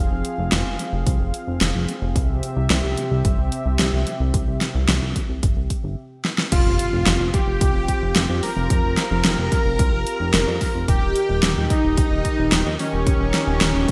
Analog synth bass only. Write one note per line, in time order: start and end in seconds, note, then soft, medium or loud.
0.11 0.23 F1 medium
0.38 0.50 F1 medium
0.52 0.64 F1 loud
0.66 0.78 F1 medium
0.93 1.05 F1 medium
1.07 1.19 C2 loud
1.20 1.32 F1 medium
1.48 1.60 F1 medium
1.61 1.73 F1 loud
1.75 1.87 F1 medium
2.02 2.14 F1 medium
2.16 2.28 C2 loud
2.29 2.41 C2 medium
2.57 2.69 C2 medium
2.70 2.82 C2 loud
2.84 2.96 C2 medium
3.11 3.23 C2 medium
3.25 3.37 G1 loud
3.38 3.51 C2 medium
3.66 3.78 C2 medium
3.79 3.91 C2 loud
3.93 4.05 C2 medium
4.20 4.32 C2 medium
4.34 4.46 C2 loud
4.48 4.60 C2 medium
4.75 4.87 C2 medium
4.88 5.00 C2 loud
5.02 5.14 C2 medium
5.29 5.41 C2 medium
5.43 5.55 G1 medium
5.57 5.69 C2 medium
5.84 5.96 G1 medium
6.52 6.64 F1 loud
6.66 6.78 F1 medium
6.93 7.05 F1 medium
7.07 7.19 F1 loud
7.20 7.32 F1 medium
7.47 7.60 F1 medium
7.61 7.73 C2 loud
7.75 7.87 F1 medium
8.02 8.14 F1 medium
8.16 8.28 F1 loud
8.29 8.41 F2 medium
8.57 8.69 F1 medium
8.70 8.82 F1 loud
8.84 8.96 F1 medium
9.11 9.23 F1 medium
9.25 9.37 F1 loud
9.38 9.50 F1 medium
9.66 9.78 F1 medium
9.79 9.91 C2 loud
9.93 10.05 F1 medium
10.20 10.32 F1 medium
10.34 10.46 F1 loud
10.47 10.60 F2 medium
10.75 10.87 F1 medium
10.88 11.00 D#1 loud
11.02 11.14 D#1 medium
11.29 11.41 D#1 medium
11.43 11.55 D#1 loud
11.57 11.69 D#1 medium
11.84 11.96 D#1 medium
11.97 12.10 A#1 loud
12.11 12.23 D#1 medium
12.38 12.51 D#1 medium
12.52 12.64 D#1 loud
12.66 12.78 D#2 medium
12.93 13.05 D#1 medium
13.07 13.19 D#1 loud
13.20 13.32 D#1 medium
13.47 13.60 D#1 medium
13.61 13.73 D#1 loud
13.75 13.87 D#1 medium